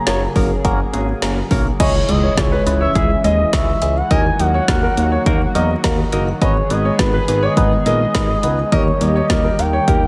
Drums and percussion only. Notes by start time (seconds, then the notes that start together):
0.07 snare, closed hi-hat
0.36 kick, open hi-hat
0.65 kick, closed hi-hat
0.94 closed hi-hat
1.22 snare, closed hi-hat
1.51 kick, open hi-hat
1.80 kick, closed hi-hat, crash
2.09 closed hi-hat
2.37 kick, snare, closed hi-hat
2.67 closed hi-hat
2.95 kick, closed hi-hat
3.24 closed hi-hat
3.53 kick, snare, closed hi-hat
3.82 closed hi-hat
4.11 kick, closed hi-hat
4.39 closed hi-hat
4.68 kick, snare, closed hi-hat
4.97 closed hi-hat
5.26 kick, closed hi-hat
5.55 closed hi-hat
5.84 kick, snare, closed hi-hat
6.12 closed hi-hat
6.42 kick, closed hi-hat
6.70 closed hi-hat
6.99 kick, snare, closed hi-hat
7.28 closed hi-hat
7.57 kick, closed hi-hat
7.86 closed hi-hat
8.15 kick, snare, closed hi-hat
8.43 closed hi-hat
8.72 kick, closed hi-hat
9.01 closed hi-hat
9.30 kick, snare, closed hi-hat
9.59 closed hi-hat
9.88 kick, closed hi-hat